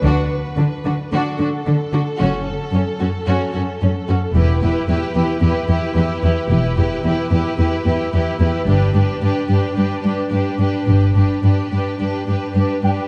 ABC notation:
X:1
M:4/4
L:1/8
Q:1/4=111
K:Glyd
V:1 name="Flute section"
z8 | z8 | z8 | z8 |
z8 | z6 z g |]
V:2 name="Violin section"
B4 A4- | A8 | B B B B B B B B | B B B B B B B B |
B B B B B B B B | B B B B B B B B |]
V:3 name="Violin section"
F z D F F F D F | F z C F F F C F | G G G G G G G G | G G G G G G G G |
G G G G G G G G | G G G G G G G G |]
V:4 name="Viola section"
D z D D D D D D | C z C C C C C C | E E E E E E E E | E E E E E E E E |
D D D D D D D D | D D D D D D D D |]
V:5 name="Cello section" clef=bass
D, z D, D, D, D, D, D, | F,, z F,, F,, F,, F,, F,, F,, | E,, E,, E,, E,, E,, E,, E,, E,, | E,, E,, E,, E,, E,, E,, E,, E,, |
G,, G,, G,, G,, G,, G,, G,, G,, | G,, G,, G,, G,, G,, G,, G,, G,, |]
V:6 name="Double bass section" clef=bass
D,, z6 z | F,,, z6 z | E,,, z6 z | E,,, z6 z |
G,,, z6 z | G,,, z6 z |]